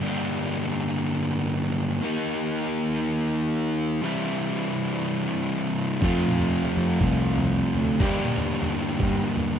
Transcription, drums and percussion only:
0, 0, Header, 1, 2, 480
1, 0, Start_track
1, 0, Key_signature, -2, "minor"
1, 0, Tempo, 498753
1, 15, Time_signature, 4, 2, 24, 8
1, 9229, End_track
2, 0, Start_track
2, 0, Title_t, "Drums"
2, 5792, Note_on_c, 9, 36, 106
2, 5797, Note_on_c, 9, 43, 77
2, 5888, Note_off_c, 9, 36, 0
2, 5893, Note_off_c, 9, 43, 0
2, 6031, Note_on_c, 9, 47, 70
2, 6127, Note_off_c, 9, 47, 0
2, 6153, Note_on_c, 9, 43, 79
2, 6249, Note_off_c, 9, 43, 0
2, 6389, Note_on_c, 9, 43, 70
2, 6485, Note_off_c, 9, 43, 0
2, 6738, Note_on_c, 9, 43, 81
2, 6743, Note_on_c, 9, 36, 103
2, 6834, Note_off_c, 9, 43, 0
2, 6839, Note_off_c, 9, 36, 0
2, 7095, Note_on_c, 9, 43, 82
2, 7192, Note_off_c, 9, 43, 0
2, 7455, Note_on_c, 9, 43, 77
2, 7551, Note_off_c, 9, 43, 0
2, 7699, Note_on_c, 9, 43, 87
2, 7701, Note_on_c, 9, 36, 107
2, 7796, Note_off_c, 9, 43, 0
2, 7797, Note_off_c, 9, 36, 0
2, 7941, Note_on_c, 9, 47, 72
2, 8037, Note_off_c, 9, 47, 0
2, 8061, Note_on_c, 9, 43, 80
2, 8157, Note_off_c, 9, 43, 0
2, 8304, Note_on_c, 9, 43, 85
2, 8401, Note_off_c, 9, 43, 0
2, 8659, Note_on_c, 9, 43, 82
2, 8661, Note_on_c, 9, 36, 98
2, 8756, Note_off_c, 9, 43, 0
2, 8757, Note_off_c, 9, 36, 0
2, 9019, Note_on_c, 9, 43, 83
2, 9115, Note_off_c, 9, 43, 0
2, 9229, End_track
0, 0, End_of_file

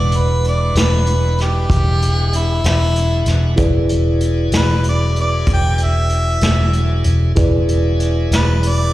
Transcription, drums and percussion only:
0, 0, Header, 1, 2, 480
1, 0, Start_track
1, 0, Tempo, 629591
1, 2738, Time_signature, 12, 3, 24, 8
1, 6811, End_track
2, 0, Start_track
2, 0, Title_t, "Drums"
2, 88, Note_on_c, 9, 42, 50
2, 164, Note_off_c, 9, 42, 0
2, 338, Note_on_c, 9, 42, 50
2, 414, Note_off_c, 9, 42, 0
2, 575, Note_on_c, 9, 42, 68
2, 588, Note_on_c, 9, 38, 91
2, 651, Note_off_c, 9, 42, 0
2, 665, Note_off_c, 9, 38, 0
2, 811, Note_on_c, 9, 42, 50
2, 888, Note_off_c, 9, 42, 0
2, 1054, Note_on_c, 9, 42, 45
2, 1068, Note_on_c, 9, 38, 24
2, 1131, Note_off_c, 9, 42, 0
2, 1144, Note_off_c, 9, 38, 0
2, 1294, Note_on_c, 9, 36, 69
2, 1299, Note_on_c, 9, 42, 61
2, 1370, Note_off_c, 9, 36, 0
2, 1375, Note_off_c, 9, 42, 0
2, 1541, Note_on_c, 9, 42, 50
2, 1617, Note_off_c, 9, 42, 0
2, 1776, Note_on_c, 9, 42, 54
2, 1852, Note_off_c, 9, 42, 0
2, 2012, Note_on_c, 9, 42, 62
2, 2026, Note_on_c, 9, 38, 85
2, 2089, Note_off_c, 9, 42, 0
2, 2102, Note_off_c, 9, 38, 0
2, 2254, Note_on_c, 9, 42, 58
2, 2330, Note_off_c, 9, 42, 0
2, 2483, Note_on_c, 9, 42, 52
2, 2497, Note_on_c, 9, 38, 28
2, 2559, Note_off_c, 9, 42, 0
2, 2573, Note_off_c, 9, 38, 0
2, 2723, Note_on_c, 9, 42, 69
2, 2729, Note_on_c, 9, 36, 84
2, 2799, Note_off_c, 9, 42, 0
2, 2805, Note_off_c, 9, 36, 0
2, 2965, Note_on_c, 9, 42, 51
2, 3041, Note_off_c, 9, 42, 0
2, 3206, Note_on_c, 9, 42, 53
2, 3283, Note_off_c, 9, 42, 0
2, 3444, Note_on_c, 9, 42, 73
2, 3458, Note_on_c, 9, 38, 86
2, 3521, Note_off_c, 9, 42, 0
2, 3534, Note_off_c, 9, 38, 0
2, 3687, Note_on_c, 9, 42, 55
2, 3764, Note_off_c, 9, 42, 0
2, 3933, Note_on_c, 9, 42, 51
2, 4010, Note_off_c, 9, 42, 0
2, 4166, Note_on_c, 9, 42, 69
2, 4170, Note_on_c, 9, 36, 66
2, 4242, Note_off_c, 9, 42, 0
2, 4247, Note_off_c, 9, 36, 0
2, 4406, Note_on_c, 9, 42, 50
2, 4482, Note_off_c, 9, 42, 0
2, 4645, Note_on_c, 9, 42, 53
2, 4722, Note_off_c, 9, 42, 0
2, 4887, Note_on_c, 9, 42, 60
2, 4900, Note_on_c, 9, 38, 95
2, 4963, Note_off_c, 9, 42, 0
2, 4977, Note_off_c, 9, 38, 0
2, 5131, Note_on_c, 9, 42, 51
2, 5207, Note_off_c, 9, 42, 0
2, 5368, Note_on_c, 9, 42, 51
2, 5444, Note_off_c, 9, 42, 0
2, 5612, Note_on_c, 9, 42, 61
2, 5619, Note_on_c, 9, 36, 92
2, 5688, Note_off_c, 9, 42, 0
2, 5695, Note_off_c, 9, 36, 0
2, 5858, Note_on_c, 9, 42, 50
2, 5935, Note_off_c, 9, 42, 0
2, 6097, Note_on_c, 9, 42, 52
2, 6173, Note_off_c, 9, 42, 0
2, 6340, Note_on_c, 9, 42, 68
2, 6353, Note_on_c, 9, 38, 95
2, 6416, Note_off_c, 9, 42, 0
2, 6430, Note_off_c, 9, 38, 0
2, 6578, Note_on_c, 9, 42, 59
2, 6654, Note_off_c, 9, 42, 0
2, 6811, End_track
0, 0, End_of_file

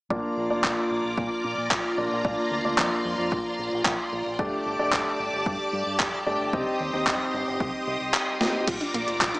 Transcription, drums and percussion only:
0, 0, Header, 1, 2, 480
1, 0, Start_track
1, 0, Key_signature, -2, "major"
1, 0, Tempo, 535714
1, 94, Time_signature, 4, 2, 24, 8
1, 8419, End_track
2, 0, Start_track
2, 0, Title_t, "Drums"
2, 94, Note_on_c, 9, 36, 110
2, 183, Note_off_c, 9, 36, 0
2, 574, Note_on_c, 9, 36, 108
2, 574, Note_on_c, 9, 39, 112
2, 663, Note_off_c, 9, 36, 0
2, 663, Note_off_c, 9, 39, 0
2, 1053, Note_on_c, 9, 36, 103
2, 1143, Note_off_c, 9, 36, 0
2, 1533, Note_on_c, 9, 36, 111
2, 1534, Note_on_c, 9, 39, 108
2, 1623, Note_off_c, 9, 36, 0
2, 1623, Note_off_c, 9, 39, 0
2, 2013, Note_on_c, 9, 36, 118
2, 2103, Note_off_c, 9, 36, 0
2, 2493, Note_on_c, 9, 39, 120
2, 2494, Note_on_c, 9, 36, 115
2, 2583, Note_off_c, 9, 36, 0
2, 2583, Note_off_c, 9, 39, 0
2, 2974, Note_on_c, 9, 36, 113
2, 3063, Note_off_c, 9, 36, 0
2, 3453, Note_on_c, 9, 39, 112
2, 3454, Note_on_c, 9, 36, 115
2, 3543, Note_off_c, 9, 36, 0
2, 3543, Note_off_c, 9, 39, 0
2, 3934, Note_on_c, 9, 36, 119
2, 4024, Note_off_c, 9, 36, 0
2, 4413, Note_on_c, 9, 39, 120
2, 4414, Note_on_c, 9, 36, 116
2, 4503, Note_off_c, 9, 39, 0
2, 4504, Note_off_c, 9, 36, 0
2, 4894, Note_on_c, 9, 36, 113
2, 4984, Note_off_c, 9, 36, 0
2, 5374, Note_on_c, 9, 36, 119
2, 5374, Note_on_c, 9, 39, 120
2, 5463, Note_off_c, 9, 36, 0
2, 5463, Note_off_c, 9, 39, 0
2, 5853, Note_on_c, 9, 36, 117
2, 5943, Note_off_c, 9, 36, 0
2, 6333, Note_on_c, 9, 36, 114
2, 6334, Note_on_c, 9, 39, 120
2, 6423, Note_off_c, 9, 36, 0
2, 6424, Note_off_c, 9, 39, 0
2, 6813, Note_on_c, 9, 36, 113
2, 6903, Note_off_c, 9, 36, 0
2, 7294, Note_on_c, 9, 39, 113
2, 7383, Note_off_c, 9, 39, 0
2, 7533, Note_on_c, 9, 38, 86
2, 7623, Note_off_c, 9, 38, 0
2, 7773, Note_on_c, 9, 36, 116
2, 7773, Note_on_c, 9, 42, 93
2, 7773, Note_on_c, 9, 49, 93
2, 7862, Note_off_c, 9, 42, 0
2, 7862, Note_off_c, 9, 49, 0
2, 7863, Note_off_c, 9, 36, 0
2, 7893, Note_on_c, 9, 42, 40
2, 7983, Note_off_c, 9, 42, 0
2, 8014, Note_on_c, 9, 42, 65
2, 8104, Note_off_c, 9, 42, 0
2, 8134, Note_on_c, 9, 42, 41
2, 8223, Note_off_c, 9, 42, 0
2, 8254, Note_on_c, 9, 36, 111
2, 8254, Note_on_c, 9, 39, 115
2, 8254, Note_on_c, 9, 42, 96
2, 8343, Note_off_c, 9, 36, 0
2, 8343, Note_off_c, 9, 39, 0
2, 8343, Note_off_c, 9, 42, 0
2, 8373, Note_on_c, 9, 42, 41
2, 8419, Note_off_c, 9, 42, 0
2, 8419, End_track
0, 0, End_of_file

